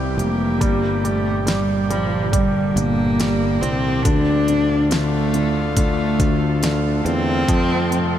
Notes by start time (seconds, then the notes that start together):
Already playing: C2 C3 E3 G3 C4 G4
0.18 F1 A#3, closed hi-hat
0.60 G1 A#2 D3 G3, kick, closed hi-hat
1.04 G3 A3, closed hi-hat
1.43 A3
1.47 G3, snare, closed hi-hat
1.90 F3 G3, closed hi-hat
2.32 G3, kick, closed hi-hat
2.76 G1 A#3, closed hi-hat
3.20 G3, snare, closed hi-hat
3.61 C2 C4, closed hi-hat
4.03 D2 D3 A3 D4 F4, kick, closed hi-hat
4.48 D3, closed hi-hat
4.91 D3 A3, snare, closed hi-hat
5.34 D3, closed hi-hat
5.77 D3 A3, kick, closed hi-hat
6.20 D2, kick, closed hi-hat
6.63 D3, snare, closed hi-hat
7.05 E2 C4, closed hi-hat
7.48 F2 C3 F3 G3 F4, kick, closed hi-hat
7.91 F3, closed hi-hat